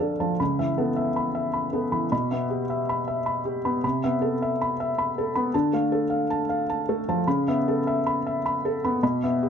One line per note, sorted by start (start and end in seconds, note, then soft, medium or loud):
0.00 0.35 D2 soft
0.00 0.20 F3 soft
0.00 0.43 D4 soft
0.00 0.42 A4 soft
0.00 0.43 F5 soft
0.00 0.20 A5 soft
0.20 0.40 F3 soft
0.20 0.40 A5 soft
0.40 2.08 C#2 soft
0.40 0.71 B5 soft
0.59 0.90 E3 soft
0.59 0.90 E5 soft
0.78 1.08 B3 soft
0.78 1.08 A4 soft
0.96 1.27 E5 soft
1.16 1.46 B5 soft
1.35 1.65 E5 soft
1.53 1.84 B5 soft
1.73 2.04 B3 soft
1.73 2.04 A4 soft
1.92 2.12 E3 soft
1.92 2.10 B5 soft
2.12 3.80 B2 soft
2.12 2.43 B5 soft
2.31 2.62 B3 soft
2.31 2.61 E5 soft
2.50 2.80 G4 soft
2.70 3.00 E5 soft
2.89 3.19 B5 soft
3.08 3.38 E5 soft
3.26 3.57 B5 soft
3.45 3.76 G4 soft
3.65 3.84 B3 soft
3.65 3.83 B5 soft
3.84 5.49 C3 soft
3.84 4.15 B5 soft
4.04 4.34 B3 soft
4.04 4.34 E5 soft
4.22 4.52 A4 soft
4.42 4.72 E5 soft
4.62 4.91 B5 medium
4.80 5.10 E5 soft
4.98 5.28 B5 medium
5.18 5.47 A4 soft
5.35 5.54 B3 soft
5.35 5.54 B5 medium
5.54 7.22 D3 medium
5.54 5.84 A5 medium
5.73 6.03 A3 soft
5.73 6.03 F5 medium
5.92 6.21 A4 medium
6.10 6.40 F5 medium
6.30 6.60 A5 medium
6.49 6.80 F5 medium
6.70 7.00 A5 medium
6.89 7.19 A3 soft
6.89 7.19 A4 soft
7.08 7.27 F3 medium
7.08 7.27 A5 medium
7.28 8.98 C#3 medium
7.28 7.58 B5 medium
7.48 7.78 B3 soft
7.48 7.78 E5 medium
7.68 7.98 A4 medium
7.87 8.17 E5 medium
8.07 8.37 B5 medium
8.27 8.56 E5 soft
8.46 8.76 B5 medium
8.65 8.95 A4 medium
8.84 9.03 B3 soft
8.84 9.02 B5 medium
9.03 9.49 B2 medium
9.03 9.33 B5 medium
9.24 9.49 B3 soft
9.24 9.49 E5 medium
9.43 9.49 G4 medium